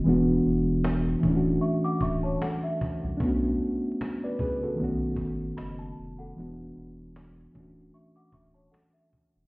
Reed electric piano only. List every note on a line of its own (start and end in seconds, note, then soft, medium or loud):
0.04 1.20 E3 medium
0.04 1.23 G#3 medium
0.04 1.24 B3 medium
0.04 1.24 D4 medium
0.09 1.25 F#4 medium
1.21 3.15 E3 medium
1.21 3.16 A3 medium
1.25 3.17 C#4 medium
1.25 3.16 D4 medium
1.30 1.34 E4 medium
1.36 3.23 F#4 medium
3.17 4.75 A3 medium
3.17 4.73 D4 medium
3.21 4.75 B3 medium
3.21 4.77 C#4 medium
3.26 4.00 F#4 medium
4.24 4.39 B4 medium
4.24 4.39 D5 medium
4.40 4.61 G#4 medium
4.40 4.60 B4 medium
4.63 4.83 F#4 medium
4.63 4.99 A4 medium
4.76 6.32 D#3 medium
4.76 6.33 A3 medium
4.76 6.34 B3 medium
4.82 6.35 C#4 medium
4.82 6.36 F#4 medium
6.36 7.51 E3 medium
6.36 7.55 G#3 medium
6.36 7.55 B3 medium
6.36 7.56 D4 medium
6.40 7.56 F#4 medium
7.52 9.47 E3 medium
7.52 9.47 A3 medium
7.57 9.47 C#4 medium
7.57 9.47 D4 medium
7.57 9.47 F#4 medium